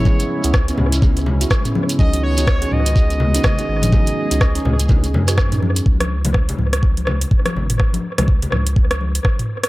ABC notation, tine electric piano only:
X:1
M:4/4
L:1/16
Q:"Swing 16ths" 1/4=124
K:C#m
V:1 name="Tine electric piano"
[B,CEG]3 [B,CEG] z [B,CEG]2 z [B,CEG]2 z [B,CEF] z [B,CEG]3 | [CDFG]3 [CDFG] z [CDFG]2 z [CDFG]2 z [CDFG] z [CDFG]3 | [CDFG]3 [CDFG] z [CDFG]2 z [CDFG]2 z [CDFG] z [CDFG]3 | z16 |
z16 |]